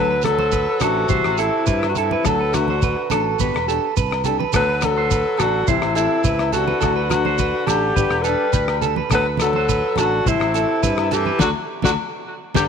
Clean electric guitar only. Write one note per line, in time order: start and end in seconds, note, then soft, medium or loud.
0.10 0.38 B4 medium
0.39 0.52 C5 medium
0.52 0.80 B4 medium
0.82 1.09 A4 medium
1.09 1.37 C5 medium
1.39 1.66 A4 medium
1.67 1.95 B4 medium
1.98 2.11 A4 medium
2.12 2.25 B4 medium
2.26 2.40 A4 medium
2.41 2.67 B4 medium
2.70 2.82 C5 medium
2.83 3.10 B4 medium
3.11 3.38 A4 medium
3.41 3.67 B4 medium
3.68 3.95 A4 medium
3.97 4.24 B4 medium
4.26 4.39 A4 medium
4.39 4.53 B4 medium
4.54 4.68 A4 medium
4.69 4.96 B4 medium
4.97 5.10 C5 medium
5.12 5.38 B4 medium
5.38 5.66 A4 medium
5.68 5.95 C5 medium
5.96 6.23 A4 medium
6.25 6.52 B4 medium
6.52 6.67 A4 medium
6.67 6.80 B4 medium
6.81 6.96 A4 medium
6.96 7.24 B4 medium
7.26 7.39 C5 medium
7.40 7.66 B4 medium
7.67 7.95 A4 medium
7.96 8.24 B4 medium
8.24 8.52 A4 medium
8.53 8.81 B4 medium
8.82 8.97 A4 medium
8.97 9.11 B4 medium
9.12 9.26 A4 medium
9.26 9.54 B4 medium
9.56 9.68 C5 medium
9.69 9.96 B4 medium
9.98 10.25 A4 medium
10.27 10.54 C5 medium
10.55 10.82 A4 medium
10.83 11.11 B4 medium
11.11 11.26 A4 medium
11.26 11.40 B4 medium
11.39 11.50 F#4 medium
11.39 11.50 A4 medium
11.39 11.50 D5 medium
11.85 11.94 F#4 medium
11.85 11.94 A4 medium
11.85 11.93 D5 medium
12.55 12.65 G4 medium
12.55 12.65 B4 medium
12.55 12.65 D5 medium